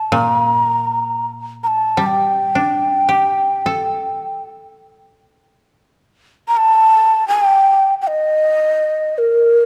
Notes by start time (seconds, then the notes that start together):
Already playing: A#2 A5
0.12 A#2 A#5
1.63 A5 A#5
1.97 G3
2.02 G5 A5
2.55 D4
3.09 G4
3.66 A4
6.48 A#5
6.57 A5
7.28 G#5
7.45 G5
8.01 G5
8.08 D#5
9.18 A#4